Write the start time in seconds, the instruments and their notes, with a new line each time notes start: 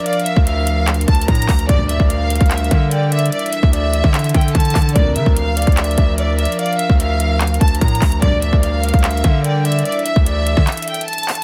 Already playing: analog synth pad F3 D4 A#4
0.06 violin section D5, soft synth lead F5, closed hi-hat
0.13 closed hi-hat
0.20 closed hi-hat
0.25 violin section E5, closed hi-hat
0.36 808-style bass D2, kick
0.47 soft synth lead E5, violin section F5, closed hi-hat
0.67 closed hi-hat
0.87 clap, closed hi-hat
0.94 closed hi-hat
1.01 closed hi-hat
1.08 808-style bass D2, violin section A5, kick, closed hi-hat
1.15 closed hi-hat
1.21 closed hi-hat
1.28 808-style bass A2, violin section A#5, kick, closed hi-hat
1.35 closed hi-hat
1.42 closed hi-hat
1.49 808-style bass D2, kick, clap, closed hi-hat, open hi-hat
1.59 closed hi-hat
1.69 string section A#1 G2 D3, 808-style bass D2, analog synth pad G3 A#4, violin section D5, soft synth lead D5, kick, closed hi-hat
1.89 violin section E5, closed hi-hat
2.00 808-style bass D2, kick
2.10 violin section F5, closed hi-hat
2.30 soft synth lead F5, closed hi-hat
2.35 closed hi-hat
2.41 808-style bass D2, kick, closed hi-hat
2.46 closed hi-hat
2.51 violin section E5, clap, closed hi-hat
2.58 closed hi-hat
2.64 closed hi-hat
2.71 808-style bass D3, kick, closed hi-hat
2.91 violin section D5, soft synth lead G5, closed hi-hat
3.12 soft synth lead D5, violin section E5, closed hi-hat
3.19 closed hi-hat
3.26 closed hi-hat
3.32 analog synth pad E3 A4, violin section D5, soft synth lead E5, closed hi-hat
3.39 closed hi-hat
3.46 closed hi-hat
3.53 violin section E5, closed hi-hat
3.63 808-style bass D2, kick
3.73 soft synth lead D5, violin section E5, closed hi-hat
3.93 closed hi-hat
4.04 808-style bass D3, kick
4.13 soft synth lead E5, clap, closed hi-hat
4.19 closed hi-hat
4.24 closed hi-hat
4.29 closed hi-hat
4.34 808-style bass D3, violin section G5, kick, closed hi-hat
4.41 closed hi-hat
4.48 closed hi-hat
4.55 808-style bass D3, violin section A5, kick, closed hi-hat
4.60 closed hi-hat
4.65 closed hi-hat
4.70 closed hi-hat
4.75 808-style bass D3, kick, clap, closed hi-hat, open hi-hat
4.82 closed hi-hat
4.89 closed hi-hat
4.95 string section A#1 F2 D3, 808-style bass D2, analog synth pad F3 A#4, soft synth lead A#4, violin section D5, kick, closed hi-hat
5.16 808-style bass D3, violin section E5, closed hi-hat
5.26 808-style bass D2, kick
5.37 violin section F5, closed hi-hat
5.56 soft synth lead D5, closed hi-hat
5.62 closed hi-hat
5.67 808-style bass D2, kick, closed hi-hat
5.72 closed hi-hat
5.77 violin section E5, clap, closed hi-hat
5.84 closed hi-hat
5.91 closed hi-hat
5.98 808-style bass D2, kick, closed hi-hat
6.18 violin section D5, soft synth lead E5, closed hi-hat
6.39 soft synth lead D5, violin section E5, closed hi-hat
6.45 closed hi-hat
6.52 closed hi-hat
6.59 violin section D5, soft synth lead F5, closed hi-hat
6.66 closed hi-hat
6.73 closed hi-hat
6.78 violin section E5, closed hi-hat
6.90 808-style bass D2, kick
7.00 soft synth lead E5, violin section F5, closed hi-hat
7.20 closed hi-hat
7.41 clap, closed hi-hat
7.47 closed hi-hat
7.54 closed hi-hat
7.61 808-style bass D2, violin section A5, kick, closed hi-hat
7.68 closed hi-hat
7.75 closed hi-hat
7.81 808-style bass A2, violin section A#5, kick, closed hi-hat
7.88 closed hi-hat
7.95 closed hi-hat
8.02 808-style bass D2, kick, clap, closed hi-hat, open hi-hat
8.12 closed hi-hat
8.22 string section A#1 G2 D3, 808-style bass D2, analog synth pad G3 D4 A#4, soft synth lead D5, violin section D5, kick, closed hi-hat
8.42 violin section E5, closed hi-hat
8.53 808-style bass D2, kick
8.63 violin section F5, closed hi-hat
8.83 soft synth lead F5, closed hi-hat
8.89 closed hi-hat
8.94 808-style bass D2, kick, closed hi-hat
8.99 closed hi-hat
9.03 violin section E5, clap, closed hi-hat
9.11 closed hi-hat
9.17 closed hi-hat
9.24 808-style bass D3, kick, closed hi-hat
9.44 violin section D5, soft synth lead G5, closed hi-hat
9.65 soft synth lead D5, violin section E5, closed hi-hat
9.72 closed hi-hat
9.79 closed hi-hat
9.85 analog synth pad E3 A4, violin section D5, soft synth lead E5, closed hi-hat
9.92 closed hi-hat
9.99 closed hi-hat
10.06 violin section E5, closed hi-hat
10.16 808-style bass D2, kick
10.26 soft synth lead D5, violin section E5, closed hi-hat
10.47 closed hi-hat
10.57 808-style bass D3, kick
10.66 soft synth lead E5, clap, closed hi-hat
10.72 closed hi-hat
10.77 closed hi-hat
10.82 closed hi-hat
10.88 violin section G5, closed hi-hat
10.94 closed hi-hat
11.01 closed hi-hat
11.08 violin section A5, closed hi-hat
11.13 closed hi-hat
11.18 closed hi-hat
11.23 closed hi-hat
11.28 clap, closed hi-hat, open hi-hat
11.35 closed hi-hat